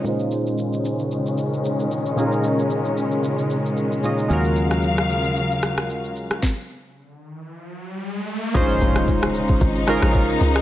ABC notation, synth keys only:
X:1
M:4/4
L:1/8
Q:"Swing 16ths" 1/4=113
K:Bbm
V:1 name="Synth keys"
[B,,A,DEFc]8 | [B,,A,DEFAB]6- [B,,A,DEFAB] [B,,A,DEFe] | [A,DFGB]8 | z8 |
[A,DEFc]3 z2 [A,DEFB]2 z |]